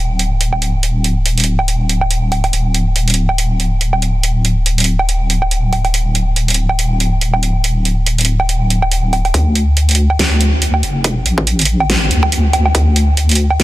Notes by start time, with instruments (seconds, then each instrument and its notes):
Already playing: wobble bass D1
0.19 closed hi-hat
0.41 closed hi-hat
0.53 low woodblock
0.62 closed hi-hat
0.83 closed hi-hat
1.04 closed hi-hat
1.26 closed hi-hat
1.38 closed hi-hat
1.40 closed hi-hat
1.44 closed hi-hat
1.59 low woodblock
1.68 closed hi-hat
1.89 closed hi-hat
2.01 low woodblock
2.11 closed hi-hat
2.32 closed hi-hat, low woodblock
2.44 closed hi-hat, low woodblock
2.53 wobble bass D1, closed hi-hat
2.74 closed hi-hat
2.96 closed hi-hat
3.08 closed hi-hat
3.10 closed hi-hat
3.14 closed hi-hat
3.29 low woodblock
3.38 closed hi-hat
3.60 closed hi-hat
3.81 closed hi-hat
3.93 low woodblock
4.02 closed hi-hat
4.23 closed hi-hat
4.45 closed hi-hat
4.66 closed hi-hat
4.78 closed hi-hat
4.80 closed hi-hat
4.84 closed hi-hat
4.99 low woodblock
5.09 closed hi-hat
5.30 closed hi-hat
5.42 low woodblock
5.51 closed hi-hat
5.73 closed hi-hat, low woodblock
5.85 closed hi-hat, low woodblock
5.94 closed hi-hat
6.15 closed hi-hat
6.36 closed hi-hat
6.48 closed hi-hat
6.50 closed hi-hat
6.54 closed hi-hat
6.69 low woodblock
6.79 closed hi-hat
7.00 closed hi-hat
7.21 closed hi-hat
7.34 low woodblock
7.43 closed hi-hat
7.64 closed hi-hat
7.85 closed hi-hat
8.06 closed hi-hat
8.18 closed hi-hat
8.21 closed hi-hat
8.25 closed hi-hat
8.40 low woodblock
8.49 closed hi-hat
8.70 closed hi-hat
8.82 low woodblock
8.92 closed hi-hat
9.13 closed hi-hat, low woodblock
9.25 closed hi-hat, low woodblock
9.34 wobble bass D2, kick, closed hi-hat
9.55 closed hi-hat
9.77 closed hi-hat
9.89 closed hi-hat
9.91 closed hi-hat
9.95 closed hi-hat
10.10 low woodblock
10.19 snare, closed hi-hat
10.41 closed hi-hat
10.62 closed hi-hat
10.74 low woodblock
10.83 wobble bass F1, closed hi-hat
11.04 kick, closed hi-hat
11.26 wobble bass A1, closed hi-hat
11.38 kick
11.47 closed hi-hat
11.59 closed hi-hat
11.61 closed hi-hat
11.65 closed hi-hat
11.80 low woodblock
11.90 snare, closed hi-hat
12.11 wobble bass D2, closed hi-hat
12.23 kick, low woodblock
12.32 closed hi-hat
12.53 closed hi-hat, low woodblock
12.66 low woodblock
12.75 wobble bass D2, kick, closed hi-hat
12.96 closed hi-hat
13.17 closed hi-hat
13.29 closed hi-hat
13.31 closed hi-hat
13.35 closed hi-hat
13.50 low woodblock
13.60 wobble bass D2, snare, closed hi-hat